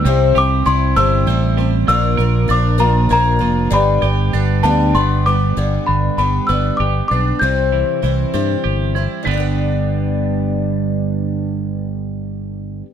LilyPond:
<<
  \new Staff \with { instrumentName = "Celesta" } { \time 6/8 \key g \mixolydian \tempo 4. = 65 e'''8 d'''8 c'''8 e'''4 r8 | e'''4 d'''8 bes''8 bes''4 | b''4. a''8 c'''8 d'''8~ | d'''8 b''8 b''8 e'''8 d'''8 d'''8 |
g'''2~ g'''8 r8 | b'''2.~ | b'''2. | }
  \new Staff \with { instrumentName = "Grand piano" } { \time 6/8 \key g \mixolydian << { r2. | r2. | r2 b''4 | r2. |
r2. | r2. | r2. | } \\ { <g' c'' e'' g''>4 r8 <g' c'' e'' a''>4 r8 | <f' bes' d'' f''>4 r8 <f' bes' d'' f''>4 r8 | <g' b' d'' g''>4 r8 <b g' d'' f''>4 r8 | r2. |
r2. | r2. | r2. | } >> }
  \new Staff \with { instrumentName = "Twelve-string acoustic guitar" } { \time 6/8 \key g \mixolydian <c g c' e' c''>8 <c' e' c''>8 <g c' e' c''>8 <c g c' e' c''>8 <g c' e' c''>8 <c' e' c''>8 | <bes, d f bes d' bes'>8 <f bes d' bes'>8 <f bes d' bes'>8 <bes, d f bes d' bes'>8 <f bes d' bes'>8 <f bes d' bes'>8 | <g, d g b d' b'>8 <b d' b'>8 <g b d' b'>8 <g, d g b d' b'>8 <g b d'>8 <g b d' b'>8 | <g, d g b d' b'>4 <g b d' b'>8 <g, d g b d' b'>4 <g b d' b'>8 |
<c g c' e' c''>4 <g c' e' c''>8 <c g c' e' c''>4 <c' e' c''>8 | <g, d g b d' b'>2.~ | <g, d g b d' b'>2. | }
  \new Staff \with { instrumentName = "Clean electric guitar" } { \clef bass \time 6/8 \key g \mixolydian c8 g'8 e'8 g8 c'8 g8 | bes,8 bes'8 d'8 f8 bes8 f8 | g,8 g'8 d'8 g8 b8 g8 | g,8 d8 g8 b8 g'8 d'8 |
c8 e8 e8 g8 g'8 e'8 | <g, d g b d' g'>2.~ | <g, d g b d' g'>2. | }
  \new Staff \with { instrumentName = "Fingered electric bass" } { \clef bass \time 6/8 \key g \mixolydian c,8 c,8 c,8 g,,8 a,,4 | bes,,8 bes,,8 bes,,4 bes,,8 f,,8 | g,,8 g,,8 g,,8 d,8 g,,4 | g,,8 g,,8 g,,8 g,,8 g,,8 b,,8 |
c,4 c,8 g,8 g,,4 | g,,2.~ | g,,2. | }
>>